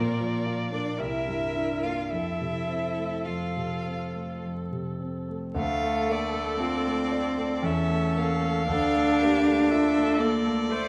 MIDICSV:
0, 0, Header, 1, 5, 480
1, 0, Start_track
1, 0, Key_signature, -1, "major"
1, 0, Tempo, 1039861
1, 460, Tempo, 1119403
1, 940, Time_signature, 3, 2, 24, 8
1, 940, Tempo, 1151631
1, 2379, Key_signature, -1, "minor"
1, 2380, Tempo, 1038062
1, 3820, Tempo, 1008403
1, 4866, End_track
2, 0, Start_track
2, 0, Title_t, "Violin"
2, 0, Program_c, 0, 40
2, 0, Note_on_c, 0, 70, 66
2, 333, Note_off_c, 0, 70, 0
2, 336, Note_on_c, 0, 74, 58
2, 459, Note_on_c, 0, 76, 65
2, 466, Note_off_c, 0, 74, 0
2, 820, Note_on_c, 0, 77, 52
2, 827, Note_off_c, 0, 76, 0
2, 934, Note_on_c, 0, 76, 60
2, 941, Note_off_c, 0, 77, 0
2, 1412, Note_on_c, 0, 77, 42
2, 1418, Note_off_c, 0, 76, 0
2, 1904, Note_off_c, 0, 77, 0
2, 2378, Note_on_c, 0, 77, 74
2, 2630, Note_on_c, 0, 74, 70
2, 2637, Note_off_c, 0, 77, 0
2, 3344, Note_on_c, 0, 76, 72
2, 3351, Note_off_c, 0, 74, 0
2, 3585, Note_on_c, 0, 77, 75
2, 3592, Note_off_c, 0, 76, 0
2, 4308, Note_off_c, 0, 77, 0
2, 4311, Note_on_c, 0, 76, 77
2, 4541, Note_on_c, 0, 74, 81
2, 4548, Note_off_c, 0, 76, 0
2, 4866, Note_off_c, 0, 74, 0
2, 4866, End_track
3, 0, Start_track
3, 0, Title_t, "Viola"
3, 0, Program_c, 1, 41
3, 0, Note_on_c, 1, 74, 57
3, 453, Note_on_c, 1, 70, 52
3, 460, Note_off_c, 1, 74, 0
3, 933, Note_on_c, 1, 69, 43
3, 940, Note_off_c, 1, 70, 0
3, 2289, Note_off_c, 1, 69, 0
3, 2378, Note_on_c, 1, 69, 68
3, 3319, Note_off_c, 1, 69, 0
3, 3338, Note_on_c, 1, 69, 67
3, 3808, Note_off_c, 1, 69, 0
3, 3818, Note_on_c, 1, 69, 72
3, 4065, Note_on_c, 1, 67, 75
3, 4072, Note_off_c, 1, 69, 0
3, 4307, Note_on_c, 1, 69, 72
3, 4315, Note_off_c, 1, 67, 0
3, 4783, Note_on_c, 1, 72, 68
3, 4790, Note_off_c, 1, 69, 0
3, 4866, Note_off_c, 1, 72, 0
3, 4866, End_track
4, 0, Start_track
4, 0, Title_t, "Cello"
4, 0, Program_c, 2, 42
4, 0, Note_on_c, 2, 58, 75
4, 329, Note_off_c, 2, 58, 0
4, 332, Note_on_c, 2, 62, 68
4, 456, Note_on_c, 2, 64, 70
4, 463, Note_off_c, 2, 62, 0
4, 815, Note_on_c, 2, 65, 59
4, 821, Note_off_c, 2, 64, 0
4, 934, Note_off_c, 2, 65, 0
4, 936, Note_on_c, 2, 64, 66
4, 1415, Note_on_c, 2, 65, 48
4, 1421, Note_off_c, 2, 64, 0
4, 1906, Note_off_c, 2, 65, 0
4, 2376, Note_on_c, 2, 57, 96
4, 2840, Note_off_c, 2, 57, 0
4, 2853, Note_on_c, 2, 60, 94
4, 3335, Note_on_c, 2, 61, 86
4, 3342, Note_off_c, 2, 60, 0
4, 3810, Note_off_c, 2, 61, 0
4, 3813, Note_on_c, 2, 62, 117
4, 4536, Note_on_c, 2, 58, 97
4, 4543, Note_off_c, 2, 62, 0
4, 4779, Note_on_c, 2, 57, 90
4, 4786, Note_off_c, 2, 58, 0
4, 4866, Note_off_c, 2, 57, 0
4, 4866, End_track
5, 0, Start_track
5, 0, Title_t, "Grand piano"
5, 0, Program_c, 3, 0
5, 0, Note_on_c, 3, 46, 61
5, 67, Control_c, 3, 64, 127
5, 93, Note_on_c, 3, 53, 45
5, 213, Note_on_c, 3, 65, 45
5, 285, Note_off_c, 3, 53, 0
5, 334, Note_on_c, 3, 58, 42
5, 409, Note_off_c, 3, 65, 0
5, 445, Note_off_c, 3, 46, 0
5, 457, Note_on_c, 3, 36, 49
5, 459, Note_off_c, 3, 58, 0
5, 468, Control_c, 3, 64, 0
5, 533, Control_c, 3, 64, 127
5, 578, Note_on_c, 3, 43, 35
5, 699, Note_on_c, 3, 62, 37
5, 770, Note_off_c, 3, 43, 0
5, 820, Note_on_c, 3, 58, 35
5, 892, Note_off_c, 3, 62, 0
5, 924, Note_off_c, 3, 36, 0
5, 940, Note_on_c, 3, 41, 40
5, 941, Note_off_c, 3, 58, 0
5, 948, Control_c, 3, 64, 0
5, 1026, Control_c, 3, 64, 127
5, 1060, Note_on_c, 3, 48, 32
5, 1177, Note_on_c, 3, 60, 33
5, 1249, Note_off_c, 3, 48, 0
5, 1298, Note_on_c, 3, 57, 31
5, 1369, Note_off_c, 3, 60, 0
5, 1416, Note_off_c, 3, 41, 0
5, 1423, Note_on_c, 3, 41, 36
5, 1492, Note_off_c, 3, 57, 0
5, 1544, Note_on_c, 3, 48, 30
5, 1667, Note_on_c, 3, 60, 31
5, 1739, Note_off_c, 3, 48, 0
5, 1786, Note_on_c, 3, 57, 31
5, 1860, Note_off_c, 3, 60, 0
5, 1903, Note_off_c, 3, 41, 0
5, 1910, Note_on_c, 3, 41, 33
5, 1979, Note_off_c, 3, 57, 0
5, 2023, Note_on_c, 3, 48, 31
5, 2144, Note_on_c, 3, 60, 36
5, 2217, Note_off_c, 3, 48, 0
5, 2261, Note_on_c, 3, 57, 31
5, 2332, Note_off_c, 3, 60, 0
5, 2366, Note_off_c, 3, 41, 0
5, 2369, Note_on_c, 3, 38, 70
5, 2376, Note_off_c, 3, 57, 0
5, 2387, Control_c, 3, 64, 0
5, 2461, Control_c, 3, 64, 127
5, 2496, Note_on_c, 3, 57, 50
5, 2615, Note_on_c, 3, 58, 46
5, 2692, Note_off_c, 3, 57, 0
5, 2732, Note_on_c, 3, 57, 52
5, 2739, Note_off_c, 3, 58, 0
5, 2856, Note_on_c, 3, 65, 59
5, 2927, Note_off_c, 3, 57, 0
5, 2976, Note_on_c, 3, 57, 56
5, 3048, Note_off_c, 3, 65, 0
5, 3095, Note_on_c, 3, 74, 60
5, 3169, Note_off_c, 3, 57, 0
5, 3213, Note_on_c, 3, 57, 53
5, 3288, Note_off_c, 3, 74, 0
5, 3314, Note_off_c, 3, 38, 0
5, 3330, Note_on_c, 3, 40, 69
5, 3335, Note_off_c, 3, 57, 0
5, 3346, Control_c, 3, 64, 0
5, 3435, Control_c, 3, 64, 127
5, 3450, Note_on_c, 3, 57, 56
5, 3577, Note_on_c, 3, 58, 48
5, 3646, Note_off_c, 3, 57, 0
5, 3694, Note_on_c, 3, 57, 53
5, 3698, Note_off_c, 3, 58, 0
5, 3800, Note_off_c, 3, 40, 0
5, 3816, Note_off_c, 3, 57, 0
5, 3818, Note_on_c, 3, 38, 71
5, 3827, Control_c, 3, 64, 0
5, 3918, Control_c, 3, 64, 127
5, 3945, Note_on_c, 3, 57, 55
5, 4067, Note_on_c, 3, 58, 50
5, 4138, Note_off_c, 3, 57, 0
5, 4187, Note_off_c, 3, 58, 0
5, 4188, Note_on_c, 3, 57, 53
5, 4311, Note_on_c, 3, 65, 61
5, 4378, Note_off_c, 3, 57, 0
5, 4428, Note_on_c, 3, 57, 58
5, 4498, Note_off_c, 3, 65, 0
5, 4542, Note_on_c, 3, 69, 60
5, 4615, Note_off_c, 3, 57, 0
5, 4665, Note_on_c, 3, 57, 61
5, 4731, Note_off_c, 3, 69, 0
5, 4775, Note_on_c, 3, 69, 61
5, 4853, Note_off_c, 3, 57, 0
5, 4866, Note_off_c, 3, 38, 0
5, 4866, Note_off_c, 3, 69, 0
5, 4866, End_track
0, 0, End_of_file